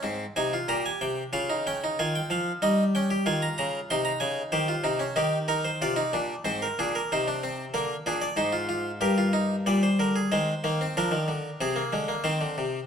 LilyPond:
<<
  \new Staff \with { instrumentName = "Harpsichord" } { \time 4/4 \key aes \major \tempo 4 = 93 << { r8 aes''8 bes''16 aes''16 g''8 f''8 g''8 aes''16 g''16 f''8 | ees''8 g''8 aes''16 bes''16 bes''8 c'''16 bes''16 aes''8 c''4 | g'8 bes'16 c''16 d''4 c''16 bes'16 aes'16 bes'16 c''4 | bes'8 aes'16 d''16 c''4 bes'4 d''16 c''16 bes'16 aes'16 |
\key aes \lydian c''4 bes'4 aes'4 c''4 | } \\ { c'8 ees'16 f'16 g'4 f'16 ees'16 des'16 ees'16 f'4 | ees'8 des'16 g'16 f'4 ees'4 g'16 f'16 ees'16 des'16 | ees'8 ees'8 f'16 ees'16 d'8 c'8 d'8 ees'16 d'16 c'8 | bes8 d'8 ees'16 f'16 f'8 g'16 f'16 ees'8 g4 |
aes8 bes16 c'16 d'4 c'16 bes16 aes16 bes16 c'4 | } >> }
  \new Staff \with { instrumentName = "Harpsichord" } { \clef bass \time 4/4 \key aes \major aes,8 c8 bes,8 c8 des4 ees8 f8 | g4 ees8 des8 c8 des8 ees8 c8 | ees4 c8 bes,8 aes,8 bes,8 c4 | d8 bes,8 aes,4 g,4 bes,8 d8 |
\key aes \lydian ees8 ees8 f16 ees16 d8 c8 d8 ees16 d16 c8 | }
>>